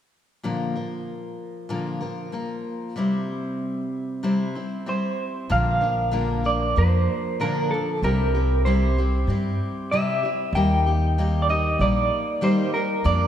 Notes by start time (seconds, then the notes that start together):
0.43 A#2 D3 F3 A#3 F4 A#4
0.75 F3 A#3 F4 A#4
1.69 A#2 D3 F3 A#3 F4 A#4
2.01 F3 A#3 F4 A#4
2.32 F3 A#3 F4 A#4
2.96 C3 G3 C4 E4 C5
4.23 C3 G3 C4 E4 C5
4.55 C4 E4 C5
4.86 G3 C4 E4 C5
5.50 A#1 A#2 D3 F3 A#3 D4 A#4 F5
5.81 F3 A#3 D4 A#4
6.11 A#2 D3 F3 A#3 D4 A#4
6.44 F3 A#3 D4 A#4 D5
6.76 F2 F3 A#3 D4 A#4 C5
7.40 A#2 D3 F3 A#3 D4 A#4
7.71 F3 A#3 D4 A4
8.02 C2 C3 G3 C4 E4 G4 A#4
8.35 C4 E4 G4
8.65 C3 G3 C4 E4 G4 C5
8.98 C4 E4 G4
9.27 G2 G3 C4 E4 G4
9.91 C3 G3 C4 E4 G4 E5
10.23 C4 E4 G4
10.53 D#2 D#3 G3 A#3 D#4 G5
10.57 G4
10.86 A#3 D#4 G4
11.18 D#3 G3 A#3 D#4 G4
11.42 D5
11.49 A#3 D#4 G4 D#5
11.79 A#1 G3 A#3 D#4 G4 D5
12.41 D#3 G3 A#3 D#4 G4 C5
12.74 A#3 D#4 G4 A#4
13.04 F2 F3 A#3 D4 A#4 D5